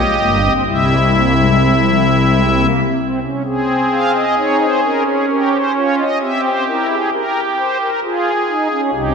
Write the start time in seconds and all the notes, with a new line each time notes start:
Already playing: G#3 G4 D#5
0.20 G1 G2 A#3
0.43 C4
0.66 C2 C3 G3 E4 E5
1.13 A#3
1.37 G#3
1.60 G3
1.83 F3
2.08 G3
2.30 G#3
2.54 A#3
2.99 C4
3.22 C#4
3.45 C4 G#4
3.92 F5
4.15 D#5
4.37 D#4 C#5
4.60 C5
4.83 C#4 A#4
5.06 G#4
5.29 G4 A#4
5.52 C5
5.76 F4 C#5
5.98 D#5
6.21 C4 G4 E5
6.44 C5
6.67 E4 A#4
6.90 G#4
7.12 G4 A#4
7.58 C5
7.81 A#4
8.03 F4 G#4
8.49 D#4
8.71 C#4
8.94 C2 C3 D#4 G4